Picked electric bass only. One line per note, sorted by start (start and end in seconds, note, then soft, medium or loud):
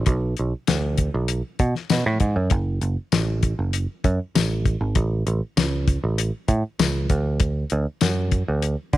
0.06 0.33 B1 loud
0.39 0.52 B1 medium
0.69 1.09 D2 medium
1.14 1.41 B1 medium
1.60 1.73 B2 medium
1.91 2.05 B2 medium
2.06 2.20 A2 medium
2.20 2.35 G#2 medium
2.36 2.50 F#2 medium
2.51 2.78 F#1 loud
2.81 2.95 F#1 medium
3.12 3.53 A1 medium
3.59 3.85 F#1 medium
4.05 4.18 F#2 medium
4.35 4.75 A1 medium
4.81 4.94 G#1 medium
4.96 5.22 A1 medium
5.27 5.40 A1 medium
5.57 5.97 C#2 medium
6.04 6.30 A1 medium
6.48 6.62 A2 medium
6.80 7.06 C#2 medium
7.10 7.63 D2 medium
7.72 7.85 D2 medium
8.02 8.42 F#2 medium
8.48 8.75 D2 medium
8.93 8.97 D3 medium